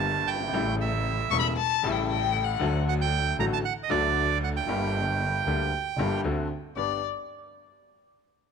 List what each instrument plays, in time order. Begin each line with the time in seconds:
Already playing: double bass G1, upright piano G1 G2 D3 G3 A#3 G4, bandoneon A5
0.27 double bass G1, bandoneon G5
0.35 upright piano F#1
0.41 upright piano G1
0.48 upright piano G#1
0.52 double bass A1, upright piano A1 A2 C#3 G3 A3 E4
0.81 bandoneon E5
1.31 double bass E1, upright piano E1 E2 C#3 G3 A3 E4, violin C#6
1.39 violin B5
1.56 violin A5
1.83 double bass A1, upright piano A1 A2 C#3 G3 A3 E4
1.91 violin G5
2.09 violin G5
2.44 violin F#5
2.59 double bass D2, upright piano D2 D3 F#3 A3 A4
2.89 bandoneon F#5
3.01 bandoneon G5
3.38 double bass A1, upright piano A1 A2 D3 F#3 A3 F#4, bandoneon A#5
3.53 bandoneon A5
3.65 bandoneon F#5
3.83 bandoneon D#5
3.90 double bass D2, upright piano D2 D3 F#3 A3 F#4, bandoneon D5
4.44 bandoneon F#5
4.56 bandoneon G5
4.67 double bass G1, upright piano G1 G2 D3 G3 A#3
4.71 upright piano G4
5.46 double bass D2, upright piano D2 D3 G3 A#3 G4
5.97 double bass G1, upright piano G1 G2 D3 G3 A#3 G4
6.24 double bass D2, upright piano D2 D3 A3 C4 F#4
6.76 double bass G1, upright piano G2 B3 D4 G4, violin D5